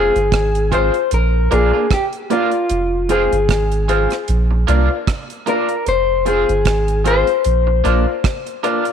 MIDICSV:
0, 0, Header, 1, 7, 480
1, 0, Start_track
1, 0, Tempo, 792602
1, 1633, Time_signature, 4, 2, 24, 8
1, 5405, End_track
2, 0, Start_track
2, 0, Title_t, "Grand piano"
2, 0, Program_c, 0, 0
2, 0, Note_on_c, 0, 65, 84
2, 0, Note_on_c, 0, 68, 76
2, 0, Note_on_c, 0, 72, 88
2, 96, Note_off_c, 0, 65, 0
2, 98, Note_off_c, 0, 68, 0
2, 100, Note_off_c, 0, 72, 0
2, 430, Note_on_c, 0, 65, 84
2, 434, Note_on_c, 0, 68, 69
2, 439, Note_on_c, 0, 72, 89
2, 575, Note_off_c, 0, 65, 0
2, 577, Note_off_c, 0, 68, 0
2, 579, Note_off_c, 0, 72, 0
2, 913, Note_on_c, 0, 65, 89
2, 916, Note_on_c, 0, 70, 78
2, 920, Note_on_c, 0, 74, 99
2, 1043, Note_off_c, 0, 70, 0
2, 1043, Note_off_c, 0, 74, 0
2, 1052, Note_on_c, 0, 70, 23
2, 1052, Note_on_c, 0, 74, 25
2, 1056, Note_off_c, 0, 65, 0
2, 1092, Note_off_c, 0, 70, 0
2, 1092, Note_off_c, 0, 74, 0
2, 1394, Note_on_c, 0, 65, 81
2, 1398, Note_on_c, 0, 70, 80
2, 1401, Note_on_c, 0, 74, 94
2, 1536, Note_off_c, 0, 65, 0
2, 1538, Note_off_c, 0, 70, 0
2, 1540, Note_off_c, 0, 74, 0
2, 1874, Note_on_c, 0, 65, 81
2, 1878, Note_on_c, 0, 68, 75
2, 1881, Note_on_c, 0, 72, 85
2, 2016, Note_off_c, 0, 65, 0
2, 2018, Note_off_c, 0, 68, 0
2, 2020, Note_off_c, 0, 72, 0
2, 2355, Note_on_c, 0, 65, 80
2, 2358, Note_on_c, 0, 68, 73
2, 2362, Note_on_c, 0, 72, 89
2, 2497, Note_off_c, 0, 65, 0
2, 2498, Note_off_c, 0, 68, 0
2, 2500, Note_off_c, 0, 72, 0
2, 2835, Note_on_c, 0, 65, 93
2, 2839, Note_on_c, 0, 70, 76
2, 2842, Note_on_c, 0, 74, 97
2, 2962, Note_off_c, 0, 74, 0
2, 2963, Note_off_c, 0, 70, 0
2, 2971, Note_on_c, 0, 74, 27
2, 2972, Note_on_c, 0, 70, 23
2, 2977, Note_off_c, 0, 65, 0
2, 3011, Note_off_c, 0, 74, 0
2, 3012, Note_off_c, 0, 70, 0
2, 3312, Note_on_c, 0, 65, 91
2, 3315, Note_on_c, 0, 70, 79
2, 3319, Note_on_c, 0, 74, 92
2, 3455, Note_off_c, 0, 65, 0
2, 3456, Note_off_c, 0, 70, 0
2, 3459, Note_off_c, 0, 74, 0
2, 3791, Note_on_c, 0, 65, 80
2, 3795, Note_on_c, 0, 68, 75
2, 3798, Note_on_c, 0, 72, 90
2, 3935, Note_off_c, 0, 65, 0
2, 3936, Note_off_c, 0, 68, 0
2, 3938, Note_off_c, 0, 72, 0
2, 4271, Note_on_c, 0, 65, 80
2, 4275, Note_on_c, 0, 68, 74
2, 4279, Note_on_c, 0, 72, 96
2, 4414, Note_off_c, 0, 65, 0
2, 4416, Note_off_c, 0, 68, 0
2, 4418, Note_off_c, 0, 72, 0
2, 4750, Note_on_c, 0, 65, 90
2, 4753, Note_on_c, 0, 70, 80
2, 4757, Note_on_c, 0, 74, 96
2, 4879, Note_off_c, 0, 70, 0
2, 4880, Note_off_c, 0, 74, 0
2, 4888, Note_on_c, 0, 70, 22
2, 4889, Note_on_c, 0, 74, 24
2, 4894, Note_off_c, 0, 65, 0
2, 4929, Note_off_c, 0, 70, 0
2, 4929, Note_off_c, 0, 74, 0
2, 5229, Note_on_c, 0, 65, 87
2, 5232, Note_on_c, 0, 70, 76
2, 5236, Note_on_c, 0, 74, 93
2, 5373, Note_off_c, 0, 65, 0
2, 5374, Note_off_c, 0, 70, 0
2, 5377, Note_off_c, 0, 74, 0
2, 5405, End_track
3, 0, Start_track
3, 0, Title_t, "Clean electric guitar"
3, 0, Program_c, 1, 27
3, 0, Note_on_c, 1, 68, 87
3, 448, Note_off_c, 1, 68, 0
3, 451, Note_on_c, 1, 72, 88
3, 688, Note_off_c, 1, 72, 0
3, 691, Note_on_c, 1, 70, 90
3, 927, Note_off_c, 1, 70, 0
3, 929, Note_on_c, 1, 68, 78
3, 1168, Note_off_c, 1, 68, 0
3, 1174, Note_on_c, 1, 67, 85
3, 1236, Note_off_c, 1, 67, 0
3, 1411, Note_on_c, 1, 65, 79
3, 1889, Note_on_c, 1, 68, 76
3, 1896, Note_off_c, 1, 65, 0
3, 2816, Note_off_c, 1, 68, 0
3, 3327, Note_on_c, 1, 70, 90
3, 3562, Note_off_c, 1, 70, 0
3, 3564, Note_on_c, 1, 72, 108
3, 3802, Note_off_c, 1, 72, 0
3, 3804, Note_on_c, 1, 68, 89
3, 4283, Note_off_c, 1, 68, 0
3, 4285, Note_on_c, 1, 72, 101
3, 5405, Note_off_c, 1, 72, 0
3, 5405, End_track
4, 0, Start_track
4, 0, Title_t, "Clean electric guitar"
4, 0, Program_c, 2, 27
4, 0, Note_on_c, 2, 56, 72
4, 0, Note_on_c, 2, 60, 74
4, 0, Note_on_c, 2, 65, 88
4, 75, Note_off_c, 2, 56, 0
4, 76, Note_off_c, 2, 60, 0
4, 78, Note_off_c, 2, 65, 0
4, 434, Note_on_c, 2, 56, 77
4, 437, Note_on_c, 2, 60, 75
4, 441, Note_on_c, 2, 65, 82
4, 555, Note_off_c, 2, 56, 0
4, 557, Note_off_c, 2, 60, 0
4, 559, Note_off_c, 2, 65, 0
4, 914, Note_on_c, 2, 58, 77
4, 916, Note_on_c, 2, 62, 83
4, 920, Note_on_c, 2, 65, 90
4, 1035, Note_off_c, 2, 58, 0
4, 1036, Note_off_c, 2, 62, 0
4, 1038, Note_off_c, 2, 65, 0
4, 1049, Note_on_c, 2, 65, 59
4, 1053, Note_on_c, 2, 62, 57
4, 1056, Note_on_c, 2, 58, 47
4, 1123, Note_off_c, 2, 65, 0
4, 1125, Note_off_c, 2, 62, 0
4, 1126, Note_off_c, 2, 58, 0
4, 1393, Note_on_c, 2, 58, 79
4, 1397, Note_on_c, 2, 62, 80
4, 1399, Note_on_c, 2, 65, 84
4, 1515, Note_off_c, 2, 58, 0
4, 1516, Note_off_c, 2, 62, 0
4, 1518, Note_off_c, 2, 65, 0
4, 1872, Note_on_c, 2, 56, 77
4, 1875, Note_on_c, 2, 60, 85
4, 1878, Note_on_c, 2, 65, 92
4, 1994, Note_off_c, 2, 56, 0
4, 1995, Note_off_c, 2, 60, 0
4, 1997, Note_off_c, 2, 65, 0
4, 2351, Note_on_c, 2, 56, 74
4, 2355, Note_on_c, 2, 60, 77
4, 2357, Note_on_c, 2, 65, 84
4, 2473, Note_off_c, 2, 56, 0
4, 2476, Note_off_c, 2, 60, 0
4, 2477, Note_off_c, 2, 65, 0
4, 2829, Note_on_c, 2, 58, 78
4, 2833, Note_on_c, 2, 62, 91
4, 2835, Note_on_c, 2, 65, 92
4, 2952, Note_off_c, 2, 58, 0
4, 2954, Note_off_c, 2, 62, 0
4, 2955, Note_off_c, 2, 65, 0
4, 3307, Note_on_c, 2, 58, 75
4, 3310, Note_on_c, 2, 62, 80
4, 3314, Note_on_c, 2, 65, 85
4, 3431, Note_off_c, 2, 58, 0
4, 3432, Note_off_c, 2, 62, 0
4, 3435, Note_off_c, 2, 65, 0
4, 3788, Note_on_c, 2, 56, 82
4, 3791, Note_on_c, 2, 60, 91
4, 3794, Note_on_c, 2, 65, 91
4, 3912, Note_off_c, 2, 56, 0
4, 3913, Note_off_c, 2, 60, 0
4, 3914, Note_off_c, 2, 65, 0
4, 4266, Note_on_c, 2, 56, 77
4, 4270, Note_on_c, 2, 60, 89
4, 4273, Note_on_c, 2, 65, 91
4, 4390, Note_off_c, 2, 56, 0
4, 4392, Note_off_c, 2, 60, 0
4, 4394, Note_off_c, 2, 65, 0
4, 4747, Note_on_c, 2, 58, 77
4, 4750, Note_on_c, 2, 62, 79
4, 4753, Note_on_c, 2, 65, 92
4, 4871, Note_off_c, 2, 58, 0
4, 4872, Note_off_c, 2, 62, 0
4, 4874, Note_off_c, 2, 65, 0
4, 5228, Note_on_c, 2, 58, 73
4, 5230, Note_on_c, 2, 62, 83
4, 5233, Note_on_c, 2, 65, 83
4, 5351, Note_off_c, 2, 58, 0
4, 5352, Note_off_c, 2, 62, 0
4, 5353, Note_off_c, 2, 65, 0
4, 5405, End_track
5, 0, Start_track
5, 0, Title_t, "Sub bass"
5, 0, Program_c, 3, 38
5, 0, Note_on_c, 3, 29, 97
5, 65, Note_off_c, 3, 29, 0
5, 93, Note_on_c, 3, 31, 89
5, 188, Note_off_c, 3, 31, 0
5, 195, Note_on_c, 3, 32, 98
5, 544, Note_off_c, 3, 32, 0
5, 678, Note_on_c, 3, 34, 96
5, 898, Note_off_c, 3, 34, 0
5, 920, Note_on_c, 3, 34, 83
5, 1041, Note_off_c, 3, 34, 0
5, 1636, Note_on_c, 3, 29, 98
5, 1984, Note_off_c, 3, 29, 0
5, 2010, Note_on_c, 3, 31, 89
5, 2106, Note_off_c, 3, 31, 0
5, 2114, Note_on_c, 3, 32, 100
5, 2464, Note_off_c, 3, 32, 0
5, 2595, Note_on_c, 3, 34, 101
5, 2816, Note_off_c, 3, 34, 0
5, 2835, Note_on_c, 3, 36, 90
5, 2958, Note_off_c, 3, 36, 0
5, 3554, Note_on_c, 3, 29, 101
5, 3903, Note_off_c, 3, 29, 0
5, 3929, Note_on_c, 3, 31, 93
5, 4025, Note_off_c, 3, 31, 0
5, 4032, Note_on_c, 3, 32, 93
5, 4382, Note_off_c, 3, 32, 0
5, 4514, Note_on_c, 3, 34, 95
5, 4735, Note_off_c, 3, 34, 0
5, 4756, Note_on_c, 3, 34, 82
5, 4878, Note_off_c, 3, 34, 0
5, 5405, End_track
6, 0, Start_track
6, 0, Title_t, "Muted clean electric guitar strokes"
6, 2729, Note_on_c, 9, 29, 46
6, 2790, Note_off_c, 9, 29, 0
6, 4645, Note_on_c, 9, 29, 54
6, 4706, Note_off_c, 9, 29, 0
6, 5405, End_track
7, 0, Start_track
7, 0, Title_t, "Drums"
7, 95, Note_on_c, 9, 42, 55
7, 156, Note_off_c, 9, 42, 0
7, 194, Note_on_c, 9, 36, 112
7, 194, Note_on_c, 9, 42, 86
7, 204, Note_on_c, 9, 37, 107
7, 254, Note_off_c, 9, 36, 0
7, 254, Note_off_c, 9, 42, 0
7, 265, Note_off_c, 9, 37, 0
7, 333, Note_on_c, 9, 42, 50
7, 394, Note_off_c, 9, 42, 0
7, 435, Note_on_c, 9, 36, 62
7, 438, Note_on_c, 9, 42, 82
7, 495, Note_off_c, 9, 36, 0
7, 499, Note_off_c, 9, 42, 0
7, 569, Note_on_c, 9, 42, 45
7, 630, Note_off_c, 9, 42, 0
7, 673, Note_on_c, 9, 42, 85
7, 733, Note_off_c, 9, 42, 0
7, 918, Note_on_c, 9, 42, 62
7, 978, Note_off_c, 9, 42, 0
7, 1154, Note_on_c, 9, 36, 113
7, 1156, Note_on_c, 9, 42, 86
7, 1159, Note_on_c, 9, 37, 105
7, 1215, Note_off_c, 9, 36, 0
7, 1217, Note_off_c, 9, 42, 0
7, 1219, Note_off_c, 9, 37, 0
7, 1288, Note_on_c, 9, 42, 46
7, 1348, Note_off_c, 9, 42, 0
7, 1396, Note_on_c, 9, 42, 67
7, 1456, Note_off_c, 9, 42, 0
7, 1523, Note_on_c, 9, 42, 48
7, 1583, Note_off_c, 9, 42, 0
7, 1632, Note_on_c, 9, 42, 86
7, 1693, Note_off_c, 9, 42, 0
7, 1873, Note_on_c, 9, 42, 68
7, 1933, Note_off_c, 9, 42, 0
7, 2013, Note_on_c, 9, 42, 57
7, 2074, Note_off_c, 9, 42, 0
7, 2113, Note_on_c, 9, 36, 113
7, 2113, Note_on_c, 9, 42, 87
7, 2123, Note_on_c, 9, 37, 107
7, 2173, Note_off_c, 9, 36, 0
7, 2173, Note_off_c, 9, 42, 0
7, 2184, Note_off_c, 9, 37, 0
7, 2250, Note_on_c, 9, 42, 50
7, 2311, Note_off_c, 9, 42, 0
7, 2355, Note_on_c, 9, 42, 83
7, 2416, Note_off_c, 9, 42, 0
7, 2485, Note_on_c, 9, 42, 48
7, 2495, Note_on_c, 9, 37, 61
7, 2546, Note_off_c, 9, 42, 0
7, 2556, Note_off_c, 9, 37, 0
7, 2591, Note_on_c, 9, 42, 90
7, 2652, Note_off_c, 9, 42, 0
7, 2836, Note_on_c, 9, 42, 67
7, 2896, Note_off_c, 9, 42, 0
7, 3073, Note_on_c, 9, 36, 114
7, 3074, Note_on_c, 9, 42, 88
7, 3077, Note_on_c, 9, 37, 104
7, 3133, Note_off_c, 9, 36, 0
7, 3135, Note_off_c, 9, 42, 0
7, 3137, Note_off_c, 9, 37, 0
7, 3209, Note_on_c, 9, 42, 51
7, 3270, Note_off_c, 9, 42, 0
7, 3313, Note_on_c, 9, 42, 66
7, 3373, Note_off_c, 9, 42, 0
7, 3443, Note_on_c, 9, 42, 49
7, 3504, Note_off_c, 9, 42, 0
7, 3551, Note_on_c, 9, 42, 81
7, 3612, Note_off_c, 9, 42, 0
7, 3791, Note_on_c, 9, 42, 67
7, 3852, Note_off_c, 9, 42, 0
7, 3931, Note_on_c, 9, 42, 53
7, 3992, Note_off_c, 9, 42, 0
7, 4029, Note_on_c, 9, 42, 88
7, 4031, Note_on_c, 9, 36, 107
7, 4039, Note_on_c, 9, 37, 109
7, 4089, Note_off_c, 9, 42, 0
7, 4091, Note_off_c, 9, 36, 0
7, 4100, Note_off_c, 9, 37, 0
7, 4167, Note_on_c, 9, 42, 51
7, 4227, Note_off_c, 9, 42, 0
7, 4273, Note_on_c, 9, 42, 84
7, 4333, Note_off_c, 9, 42, 0
7, 4404, Note_on_c, 9, 42, 45
7, 4464, Note_off_c, 9, 42, 0
7, 4508, Note_on_c, 9, 42, 93
7, 4569, Note_off_c, 9, 42, 0
7, 4753, Note_on_c, 9, 42, 63
7, 4813, Note_off_c, 9, 42, 0
7, 4991, Note_on_c, 9, 36, 116
7, 4993, Note_on_c, 9, 42, 87
7, 4995, Note_on_c, 9, 37, 109
7, 5051, Note_off_c, 9, 36, 0
7, 5053, Note_off_c, 9, 42, 0
7, 5056, Note_off_c, 9, 37, 0
7, 5126, Note_on_c, 9, 42, 48
7, 5187, Note_off_c, 9, 42, 0
7, 5232, Note_on_c, 9, 42, 70
7, 5293, Note_off_c, 9, 42, 0
7, 5361, Note_on_c, 9, 42, 52
7, 5405, Note_off_c, 9, 42, 0
7, 5405, End_track
0, 0, End_of_file